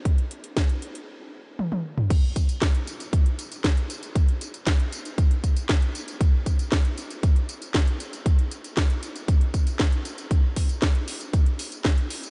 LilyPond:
\new DrumStaff \with { instrumentName = "Drums" } \drummode { \time 4/4 \tempo 4 = 117 <hh bd>16 hh16 hh16 hh16 <hh bd sn>16 hh16 hh16 hh16 r4 tommh16 tommh8 toml16 | <cymc hh bd tamb>8 <hh bd tamb>16 <hh tamb>16 <hc hh bd sn>16 hh16 <hh tamb>16 <hh tamb>16 <hh bd tamb>16 hh16 <hh tamb>16 <hh tamb>16 <hc hh bd sn>16 hh16 <hh tamb>16 <hh tamb>16 | <hh bd tamb>16 hh16 <hh tamb>16 <hh tamb>16 <hc hh bd sn tamb>16 hh16 <hh tamb>16 <hh tamb>16 <hh bd tamb>16 hh16 <hh bd tamb>16 <hh tamb>16 <hc hh bd sn tamb>16 hh16 <hh tamb>16 <hh tamb>16 | <hh bd tamb>8 <hh bd tamb>16 <hh tamb>16 <hc hh bd sn tamb>16 hh16 <hh tamb>16 <hh tamb>16 <hh bd tamb>16 hh16 <hh tamb>16 <hh tamb>16 <hc hh bd sn tamb>16 hh16 <hh tamb>16 <hh tamb>16 |
<hh bd tamb>16 hh16 <hh tamb>16 <hh tamb>16 <hc hh bd sn tamb>16 hh16 <hh tamb>16 <hh tamb>16 <hh bd tamb>16 hh16 <hh bd tamb>16 <hh tamb>16 <hc hh bd sn tamb>16 hh16 <hh tamb>16 <hh tamb>16 | <hh bd tamb>8 <hho bd tamb>16 <hh tamb>16 <hc hh bd sn tamb>16 hh16 <hho tamb>16 <hh tamb>16 <hh bd tamb>16 hh16 <hho tamb>16 <hh tamb>16 <hc hh bd sn tamb>16 hh16 <hho tamb>16 <hh tamb>16 | }